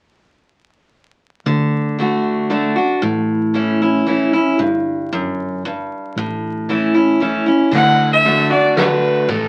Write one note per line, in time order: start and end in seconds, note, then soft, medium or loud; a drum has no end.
1.46 2.79 D2 medium
1.46 1.97 D3 medium
1.99 2.48 D3 soft
1.99 2.49 A3 soft
1.99 2.49 D4 soft
1.99 2.49 F#4 medium
2.50 2.75 D3 soft
2.50 2.76 A3 soft
2.50 2.76 D4 soft
2.50 2.74 F#4 soft
2.76 3.02 D4 soft
2.76 3.01 F#4 medium
3.02 4.36 A1 medium
3.02 4.02 A2 medium
3.54 3.80 E3 soft
3.54 3.80 A3 soft
3.54 3.80 C#4 medium
3.54 3.81 E4 soft
3.82 4.07 C#4 soft
3.82 4.07 E4 soft
4.07 4.32 E3 soft
4.07 4.32 A3 soft
4.07 4.33 C#4 medium
4.07 4.32 E4 medium
4.33 4.60 C#4 soft
4.33 4.59 E4 medium
4.59 5.92 G1 medium
4.59 5.12 G2 medium
5.13 5.62 F#2 medium
5.65 6.14 G2 medium
6.16 7.49 A1 medium
6.16 7.16 A2 medium
6.69 6.94 E3 medium
6.69 6.94 A3 soft
6.69 6.94 C#4 soft
6.69 6.93 E4 medium
6.94 7.20 C#4 soft
6.94 7.20 E4 medium
7.20 7.46 E3 soft
7.20 7.46 A3 medium
7.20 7.46 C#4 medium
7.20 7.45 E4 soft
7.46 7.72 C#4 soft
7.46 7.72 E4 soft
7.71 9.06 D2 medium
7.71 8.24 D3 medium
7.71 8.10 F#5 loud
7.71 kick medium
7.71 crash medium
8.12 8.49 E5 medium
8.25 8.50 D3 soft
8.25 8.50 A3 medium
8.25 8.51 D4 medium
8.25 8.49 F#4 medium
8.25 ride soft
8.50 8.77 D4 soft
8.50 8.76 F#4 medium
8.50 8.76 D5 medium
8.77 9.27 D3 medium
8.77 9.27 A3 medium
8.77 9.27 D4 medium
8.77 9.28 F#4 medium
8.77 9.31 B4 medium
8.77 snare medium
8.77 ride soft
9.29 9.48 A1 medium
9.29 9.48 A2 medium
9.29 9.48 A4 medium
9.29 kick medium
9.29 ride medium